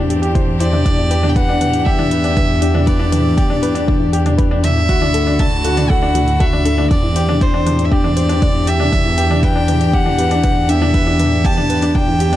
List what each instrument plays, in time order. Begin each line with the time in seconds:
Already playing: detuned saw bass E2, string quartet E3 C4 D4 G4, grand piano D4 G4 C5
0.10 synth arpeggio sound G4, grand piano D5, closed hi-hat
0.22 grand piano G4, closed hi-hat
0.35 synth arpeggio sound E4, grand piano C5, kick, closed hi-hat, mid tom
0.60 synth arpeggio sound E4, grand piano C5, violin D5, closed hi-hat
0.73 grand piano D4, synth arpeggio sound E5, mid tom
0.85 detuned saw bass E2, string quartet B3, grand piano D4, synth arpeggio sound D4, kick, closed hi-hat, mid tom
0.98 synth arpeggio sound E4
1.11 grand piano G4, synth arpeggio sound B4, closed hi-hat
1.23 grand piano D4, mid tom
1.29 violin G5
1.35 grand piano B4, violin F#5, kick, closed hi-hat
1.49 grand piano D4
1.61 grand piano D4, synth arpeggio sound B4, closed hi-hat, mid tom
1.74 synth arpeggio sound D4, closed hi-hat
1.79 violin F#5
1.85 synth arpeggio sound D4, grand piano G4, violin E5, kick
1.99 grand piano D4, synth arpeggio sound E4, mid tom
2.11 synth arpeggio sound G4, grand piano B4, closed hi-hat
2.24 grand piano D4, closed hi-hat
2.36 grand piano D4, synth arpeggio sound B4, kick, closed hi-hat, mid tom
2.62 synth arpeggio sound D4, grand piano G4, closed hi-hat
2.74 grand piano D4, synth arpeggio sound E4, mid tom
2.86 synth arpeggio sound D4, grand piano B4, violin D5, kick, closed hi-hat
2.99 grand piano D4, synth arpeggio sound E4
3.12 grand piano D4, synth arpeggio sound B4, closed hi-hat, mid tom
3.37 grand piano G4, kick, closed hi-hat
3.50 grand piano D4, mid tom
3.62 synth arpeggio sound B4, grand piano B4, closed hi-hat
3.75 grand piano D4, synth arpeggio sound D4, closed hi-hat
3.87 synth arpeggio sound D4, grand piano D4, kick, mid tom
4.00 synth arpeggio sound E4
4.13 synth arpeggio sound G4, grand piano G4, closed hi-hat
4.26 grand piano D4, closed hi-hat, mid tom
4.38 synth arpeggio sound B4, grand piano B4, kick, closed hi-hat
4.51 grand piano D4
4.63 synth arpeggio sound D4, grand piano D4, violin E5, closed hi-hat, mid tom
4.76 synth arpeggio sound E4
4.88 detuned saw bass D2, string quartet D3 A3 E4 F#4, synth arpeggio sound D4, grand piano F#4, kick, closed hi-hat
5.01 grand piano D4, synth arpeggio sound E4, mid tom
5.14 synth arpeggio sound A4, grand piano A4, closed hi-hat
5.27 grand piano D4
5.39 grand piano D4, violin A5, kick, closed hi-hat, mid tom
5.64 grand piano F#4, synth arpeggio sound A4, closed hi-hat
5.77 synth arpeggio sound D4, grand piano D4, closed hi-hat, mid tom
5.90 synth arpeggio sound D4, grand piano A4, violin F#5, kick
6.02 grand piano D4, synth arpeggio sound E4
6.15 grand piano D4, synth arpeggio sound F#4, closed hi-hat, mid tom
6.28 closed hi-hat
6.40 grand piano F#4, synth arpeggio sound A4, violin E5, kick, closed hi-hat
6.53 grand piano D4, mid tom
6.65 synth arpeggio sound D4, grand piano A4, closed hi-hat
6.78 grand piano D4, synth arpeggio sound E4
6.90 detuned saw bass E2, string quartet E3 C4 D4 G4, synth arpeggio sound D4, grand piano D4, violin D5, kick, closed hi-hat, mid tom
7.03 synth arpeggio sound E4
7.16 grand piano G4, synth arpeggio sound C5, closed hi-hat
7.28 grand piano D4, mid tom
7.41 grand piano C5, violin C5, kick, closed hi-hat
7.54 grand piano D4
7.66 grand piano D4, synth arpeggio sound C5, closed hi-hat, mid tom
7.79 synth arpeggio sound D4, closed hi-hat
7.85 violin E5
7.91 synth arpeggio sound D4, grand piano G4, violin D5, kick
8.04 grand piano D4, synth arpeggio sound E4, mid tom
8.16 synth arpeggio sound G4, grand piano C5, closed hi-hat
8.29 grand piano D4, synth arpeggio sound C5, closed hi-hat
8.42 grand piano D4, synth arpeggio sound G4, kick, closed hi-hat, mid tom
8.67 grand piano G4, violin E5, synth arpeggio sound G5, closed hi-hat
8.80 grand piano D4, synth arpeggio sound E4, mid tom
8.92 detuned saw bass E2, string quartet B3, grand piano D4, synth arpeggio sound D4, kick, closed hi-hat, mid tom
9.05 synth arpeggio sound E4
9.18 grand piano G4, synth arpeggio sound B4, closed hi-hat
9.30 grand piano D4, mid tom
9.43 grand piano B4, violin G5, kick, closed hi-hat
9.56 grand piano D4
9.68 grand piano D4, synth arpeggio sound B4, closed hi-hat, mid tom
9.81 synth arpeggio sound D4, closed hi-hat
9.93 synth arpeggio sound D4, grand piano G4, violin F#5, kick
10.06 grand piano D4, synth arpeggio sound E4, mid tom
10.18 synth arpeggio sound G4, grand piano B4, closed hi-hat
10.31 grand piano D4, closed hi-hat
10.44 grand piano D4, synth arpeggio sound B4, kick, closed hi-hat, mid tom
10.69 synth arpeggio sound D4, grand piano G4, violin E5, closed hi-hat
10.81 grand piano D4, synth arpeggio sound E4, mid tom
10.94 synth arpeggio sound D4, grand piano B4, kick, closed hi-hat
11.07 grand piano D4, synth arpeggio sound E4
11.19 grand piano D4, synth arpeggio sound B4, closed hi-hat, mid tom
11.45 grand piano G4, violin A5, kick, closed hi-hat
11.57 grand piano D4, mid tom
11.70 synth arpeggio sound B4, grand piano B4, closed hi-hat
11.82 synth arpeggio sound D4, grand piano D4, closed hi-hat
11.95 grand piano D4, synth arpeggio sound D4, violin G5, kick, mid tom
12.08 synth arpeggio sound E4
12.20 grand piano G4, synth arpeggio sound G4, closed hi-hat
12.33 grand piano D4, closed hi-hat, mid tom